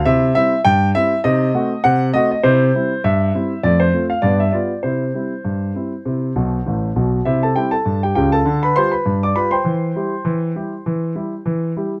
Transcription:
X:1
M:2/4
L:1/16
Q:"Swing 16ths" 1/4=100
K:C
V:1 name="Grand piano"
e2 e2 g2 e2 | _e4 _g2 e e | c4 e4 | d c2 f d e d2 |
c8- | c6 z2 | [Ee] [Aa] [Gg] [Aa]2 [Gg] [Gg] [Aa]- | [Aa] [Bb] [cc'] [Bb]2 [dd'] [Bb] [cgc']- |
[cgc']8- | [cgc']6 z2 |]
V:2 name="Grand piano"
[C,E]2 [G,CE]2 G,,2 [G,CE]2 | [C,_E]2 [A,C_G]2 C,2 [A,CG]2 | [C,E]2 [G,CE]2 G,,2 [G,CE]2 | [F,,A,]2 [A,CF]2 [G,,B,]2 [G,B,F]2 |
[C,E]2 [G,CE]2 G,,2 [G,CE]2 | [C,E]2 [B,,,B,,]2 [A,,,A,,]2 [B,,,B,,]2 | C,2 [G,CE]2 G,,2 [_D,,_D,]2 | D,2 [G,FG]2 G,,2 [G,FG]2 |
E,2 [G,EG]2 E,2 [G,EG]2 | E,2 [G,EG]2 E,2 [G,EG]2 |]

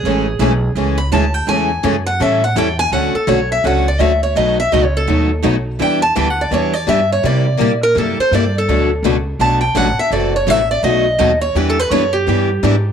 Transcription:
X:1
M:4/4
L:1/16
Q:"Swing" 1/4=167
K:A
V:1 name="Steel-string acoustic guitar"
G8 z2 b2 a2 =g2 | g6 f2 e2 f2 =g2 ^g2 | [K:Bm] f2 A2 c2 e2 f2 d2 e2 c2 | ^d2 e2 (3d2 c2 A2- A2 z6 |
g2 a2 (3g2 f2 d2 c2 d2 e2 c2 | d6 _B2 A2 =c2 d2 A2- | A2 z6 a2 g2 f2 e2 | d2 c2 e2 d2 ^d6 c2 |
(3B2 A2 B2 c2 G8- G2 |]
V:2 name="Steel-string acoustic guitar"
[E,G,CEA]2 z2 [E,G,CEA] z3 [E,G,CEA]2 z2 [E,G,CEA] z3 | [E,G,CEA]2 z2 [E,G,CEA] z3 [E,=G,CEA]2 z2 [E,G,CEA] z3 | [K:Bm] [D,A,CFA]2 z2 [D,A,CFA] z3 [D,A,CFA]2 z2 [D,A,CFA] z3 | [B,,F,A,^DFB]2 z2 [B,,F,A,DFB] z3 [B,,F,A,DFB]2 z2 [B,,F,A,DFB] z3 |
[E,G,DEB]2 z2 [E,G,DEB] z3 [E,G,DEB]2 z2 [E,G,DEB] z3 | [=C,G,_B,EG]2 z2 [C,G,B,EG] z3 [C,G,B,EG]2 z2 [C,G,B,EG] z3 | [B,,F,A,DFB]2 z2 [B,,F,A,DFB] z3 [B,,F,A,DFB]2 z2 [B,,F,A,DFB] z3 | [F,=CEA]2 z2 [F,CEA] z3 [B,,F,A,^DFB]2 z2 [B,,F,A,DFB] z3 |
[E,G,DEB]2 z2 [E,G,DEB] z3 [E,G,DEB]2 z2 [E,G,DEB] z3 |]
V:3 name="Steel-string acoustic guitar"
[C,E,A,CG]2 z2 [C,E,A,CG] z3 [C,E,A,CG]2 z2 [C,E,A,CG] z3 | [C,E,A,CG]2 z2 [C,E,A,CG] z3 [E,=G,CEA]2 z2 [E,G,CEA] z3 | [K:Bm] [D,F,A,CF]2 z2 [D,F,A,CF] z3 [D,F,A,CF]2 z2 [D,F,A,CF] z3 | [B,,F,A,^DF]2 z2 [B,,F,A,DF] z3 [B,,F,A,DF]2 z2 [B,,F,A,DF] z3 |
[E,B,DG]2 z2 [E,B,DG] z3 [E,B,DG]2 z2 [E,B,DG] z3 | [=C,G,_B,EG]2 z2 [C,G,B,EG] z3 [C,G,B,EG]2 z2 [C,G,B,EG] z3 | [B,,F,A,DF]2 z2 [B,,F,A,DF] z3 [B,,F,A,DF]2 z2 [B,,F,A,DF] z3 | [=C,E,A,EF]2 z2 [C,E,A,EF] z3 [B,,F,A,^DF]2 z2 [B,,F,A,DF] z3 |
[E,B,DG]2 z2 [E,B,DG] z3 [E,B,DG]2 z2 [E,B,DG] z3 |]
V:4 name="Upright bass" clef=bass
A,,,4 B,,,4 C,,4 D,,4 | E,,4 F,,4 A,,4 E,,4 | [K:Bm] D,,2 z2 B,,,4 C,,4 D,,4 | B,,,4 C,,4 ^D,,4 B,,,4 |
E,,4 D,,4 E,,4 G,,4 | =C,4 _B,,4 F,,2 z2 G,,4 | D,,4 C,,4 B,,,4 A,,,2 z2 | F,,,4 A,,,4 B,,,4 ^D,,4 |
E,,4 F,,4 G,,4 ^G,,4 |]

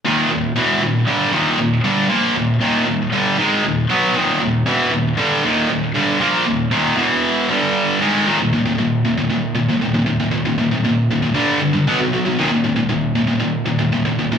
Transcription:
X:1
M:4/4
L:1/16
Q:1/4=117
K:none
V:1 name="Distorted electric guitar" clef=bass
[_E,,_B,,_E,]2 [E,,B,,]2 [_F,,_C,_F,]2 [E,,B,,]2 [G,,D,G,]2 [E,,B,,E,]2 [E,,B,,]2 [G,,D,G,]2 | [_B,,F,_B,]2 [_E,,B,,]2 [E,,B,,_E,]2 [E,,B,,]2 [G,,D,G,]2 [_A,,E,_A,]2 [E,,B,,]2 [_C,_G,_C]2 | [_E,,_B,,_E,]2 [E,,B,,]2 [_F,,_C,_F,]2 [E,,B,,]2 [G,,D,G,]2 [E,,B,,E,]2 [E,,B,,]2 [G,,D,G,]2 | [_B,,F,_B,]2 [_E,,B,,]2 [E,,B,,_E,]2 [=E,,=B,,=E,]4 [G,,D,G,]4 [_A,,_E,_A,]2 |
[_E,,_B,,_E,] [E,,B,,] [E,,B,,] [E,,B,,] [E,,B,,]2 [E,,B,,] [E,,B,,] [E,,B,,]2 [E,,B,,] [E,,B,,] [E,,B,,] [E,,B,,] [E,,B,,] [E,,B,,] | [_E,,_B,,] [E,,B,,] [E,,B,,] [E,,B,,] [E,,B,,]2 [E,,B,,] [E,,B,,] [G,,D,G,]2 [G,,D,] [G,,D,] [=B,,^F,B,] [B,,F,] [B,,F,] [B,,F,] | [_E,,_B,,_E,] [E,,B,,] [E,,B,,] [E,,B,,] [E,,B,,]2 [E,,B,,] [E,,B,,] [E,,B,,]2 [E,,B,,] [E,,B,,] [E,,B,,] [E,,B,,] [E,,B,,] [E,,B,,] |]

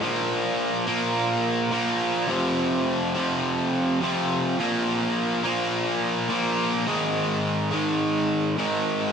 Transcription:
X:1
M:4/4
L:1/8
Q:1/4=105
K:Bb
V:1 name="Overdriven electric guitar" clef=bass
[B,,F,B,]3 [B,,F,B,]3 [B,,F,B,]2 | [F,,C,F,]3 [F,,C,F,]3 [F,,C,F,]2 | [B,,F,B,]3 [B,,F,B,]3 [B,,F,B,]2 | [_A,,E,_A,]3 [A,,E,A,]3 [A,,E,A,]2 |]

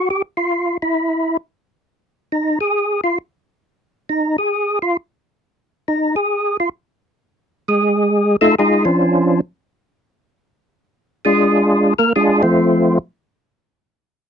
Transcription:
X:1
M:4/4
L:1/8
Q:"Swing" 1/4=134
K:Dphr
V:1 name="Tonewheel organ"
G F2 =E3 z2 | z2 E _A2 F z2 | z2 E _A2 F z2 | z2 E _A2 F z2 |
z2 [_A,_A]3 [=A,EF=A] [^G,EF^G] [F,_D=DF]- | [F,_D=DF]2 z6 | z2 [_A,DF_A]3 [B,B] [A,DFA] [F,=A,CF]- | [F,A,CF]2 z6 |]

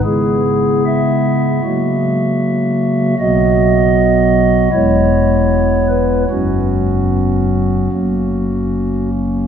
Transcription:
X:1
M:4/4
L:1/8
Q:1/4=76
K:F#mix
V:1 name="Pipe organ"
G2 e6 | d4 c3 B | F6- F z |]
V:2 name="Pipe organ" clef=bass
[C,G,B,E]4 [C,F,A,F]4 | [B,,,B,,F,B,F]4 [E,,,E,,G,B,E]4 | [F,,,F,,F,B,C]4 [F,,,F,,F,A,C]4 |]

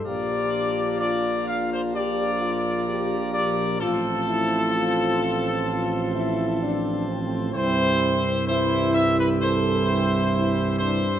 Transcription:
X:1
M:4/4
L:1/16
Q:1/4=64
K:C
V:1 name="Trumpet section"
d4 d2 f c d6 d2 | A12- A2 z2 | c4 c2 e B c6 c2 |]
V:2 name="French horn section"
G4 F4 G2 F2 G4 | F2 E2 F4 F2 E2 D2 C2- | C4 E4 A2 G2 E2 D2 |]
V:3 name="Pipe organ"
[_B,,F,F_B]16 | [A,,F,Ac]16 | [G,,G,Ec]16 |]
V:4 name="Trombone section" clef=bass
[F,D]16 | [F,C]16 | [E,E]4 [E,E]4 [E,E]8 |]
V:5 name="Tuba" clef=bass
_B,,,16 | A,,,16 | C,,16 |]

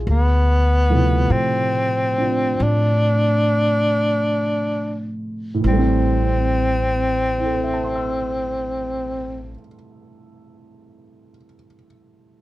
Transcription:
X:1
M:4/4
L:1/8
Q:"Swing" 1/4=35
K:Am
V:1 name="Grand piano"
_A z6 z | z2 [EAceac'e']6 |]
V:2 name="Grand piano"
z [C,F,A,E]2 [CDF]4- [CDF] | [A,,E,G,A,C]8 |]
V:3 name="Tenor saxophone"
B,2 C2 D3 z | C8 |]
V:4 name="Upright bass" clef=bass
D,,2 A,,2 A,,4 | A,,,8 |]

